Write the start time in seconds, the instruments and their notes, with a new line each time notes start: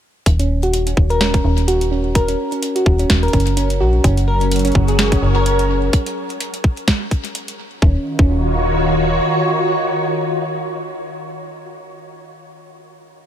0.26 fm bass D#1, kick, closed hi-hat
0.39 synth pluck C#4, closed hi-hat
0.63 synth pluck F#4, closed hi-hat
0.73 closed hi-hat
0.87 synth pluck C#4, closed hi-hat
0.97 fm bass D#1, kick
1.10 synth pluck A#4, closed hi-hat
1.20 synth pluck C#4, snare, closed hi-hat
1.34 kick, closed hi-hat
1.44 fm bass D#1, synth pluck C#4
1.58 closed hi-hat
1.68 synth pluck F#4, closed hi-hat
1.81 closed hi-hat
1.91 synth pluck C#4
2.15 synth pluck A#4, kick, closed hi-hat
2.28 synth pluck C#4, closed hi-hat
2.52 synth pluck C#4, closed hi-hat
2.63 closed hi-hat
2.76 synth pluck F#4, closed hi-hat
2.86 fm bass D#1, kick
2.99 synth pluck C#4, closed hi-hat
3.10 fm bass D#1, kick, snare, closed hi-hat
3.23 synth pluck A#4, closed hi-hat
3.28 closed hi-hat
3.33 fm bass F#1, synth pluck C#4, kick, closed hi-hat
3.40 closed hi-hat
3.47 closed hi-hat
3.57 synth pluck C#4, closed hi-hat
3.70 closed hi-hat
3.81 fm bass A#1, synth pluck F#4
4.04 fm bass F#1, string machine F#3, synth pluck C#4, kick, closed hi-hat
4.17 closed hi-hat
4.28 synth pluck A#4
4.41 synth pluck C#4, string machine F#4, closed hi-hat
4.51 string machine G#4, closed hi-hat
4.56 closed hi-hat
4.59 closed hi-hat
4.65 synth pluck C#4, closed hi-hat
4.67 closed hi-hat
4.72 fm bass F#1, kick, closed hi-hat
4.85 synth pluck G#4, string machine A#4, closed hi-hat
4.90 string machine C#5
4.99 snare, closed hi-hat
5.12 synth pluck C#4, kick, closed hi-hat
5.22 fm bass F#1
5.35 synth pluck A#4
5.46 synth pluck C#4, closed hi-hat
5.59 closed hi-hat
5.70 synth pluck C#4
5.93 kick, closed hi-hat
6.06 closed hi-hat
6.30 closed hi-hat
6.40 closed hi-hat
6.54 closed hi-hat
6.64 kick
6.77 closed hi-hat
6.88 kick, snare, closed hi-hat
7.11 kick, closed hi-hat
7.25 closed hi-hat
7.35 closed hi-hat
7.48 closed hi-hat
7.82 fm bass D#1, string machine D#3, synth pluck C#4, kick
7.90 string machine D#4
7.98 string machine F4
8.04 string machine F#4
8.11 string machine C#5
8.19 fm bass D#1, synth pluck C#4, kick